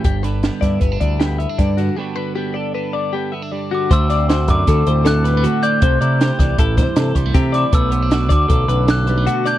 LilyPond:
<<
  \new Staff \with { instrumentName = "Glockenspiel" } { \time 5/4 \key g \major \tempo 4 = 156 r1 r4 | r1 r8 d'''8 | e'''4. d'''4. fis'''4. g'''8~ | g'''2~ g'''8 r2 d'''8 |
e'''4. d'''4. fis'''4. g'''8 | }
  \new Staff \with { instrumentName = "Clean electric guitar" } { \time 5/4 \key g \major g'8 b'8 g'8 d''8 b'8 d''8 g'8 e''8 d''8 fis'8 | g'8 b'8 g'8 d''8 b'8 d''8 g'8 e''8 d''8 fis'8 | c''8 d''8 c''8 d''8 a'8 c''8 a'8 b'8 fis'8 d''8 | c''8 d''8 c''8 d''8 a'8 c''8 a'8 c''8 g'8 d''8 |
b'8 c''8 b'8 d''8 a'8 b'8 a'8 b'8 fis'8 d''8 | }
  \new Staff \with { instrumentName = "Clean electric guitar" } { \time 5/4 \key g \major << { g4 b8 e'8 b16 d'8. b8 b16 d'4~ d'16 | <d b d' fis'>4 b8 a'8 d'4 b8 b16 d'4~ d'16 | <d a c' fis'>8 c'8 fis'4 c'4. g16 a16 a8 c'8 | a8 e'8 g'4 e'4. g16 a16 a8 e'8 |
a8 b16 d'16 fis'4 d'4. g16 a16 a8 d'8 | } \\ { g,8 d2 d4. g,8 d8 | g,8 d2 d4. g,8 d8 | d,4. d4 a,4. d,4 | c4. e4 g,4. c4 |
b,4. d4 fis,4. b,4 | } >> }
  \new Staff \with { instrumentName = "Picked electric bass" } { \clef bass \time 5/4 \key g \major g,,4. g,8 g,,8 d,4. g,4 | r1 r4 | d,4. fis,8 d,8 d,2 r8 | c,8 c4 c,8 a,,8 c16 r16 c8 c,8 c4 |
b,,4. d,8 b,,8 b,,2 r8 | }
  \new DrumStaff \with { instrumentName = "Drums" } \drummode { \time 5/4 <hh bd>8 <hh sn>8 <hh sn>8 <hh bd sn>8 <hh bd>8 <hh bd>8 <hh sn>8 hh8 <hh bd sn>8 <hh sn>8 | r4 r4 r4 r4 r4 | <hh bd>8 <hh sn>8 <hh sn>8 <hh bd>8 <hh bd sn>8 hh8 <hh sn>8 <hh sn>8 hh8 hh8 | <hh bd>8 hh8 <hh sn>8 <hh bd sn>8 <hh bd>8 <hh bd sn>8 <hh sn>8 <hh bd>8 <hh bd sn>8 <hh sn>8 |
<hh bd>8 hh8 <hh sn>8 <hh bd>8 <hh bd>8 hh8 <hh sn>8 hh8 hh8 <hh sn>8 | }
>>